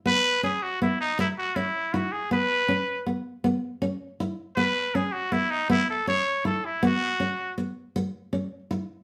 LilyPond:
<<
  \new Staff \with { instrumentName = "Muted trumpet" } { \time 12/8 \key e \major \tempo 4. = 106 b'4 gis'8 fis'8 e'8 dis'8 e'8 fis'8 e'4 fis'8 gis'8 | b'2 r1 | b'4 gis'8 fis'8 e'8 dis'8 e'8 a'8 cis''4 a'8 e'8 | fis'2 r1 | }
  \new Staff \with { instrumentName = "Nylon-string guitar" } { \time 12/8 \key e \major b4 cis'4 b4 r4 cis'4 e'4 | b4 cis'4 b4 b4 cis'4 e'4 | b4 cis'4 b4 b4 cis'4 e'4 | b4 cis'4 b4 r4 cis'4 e'4 | }
>>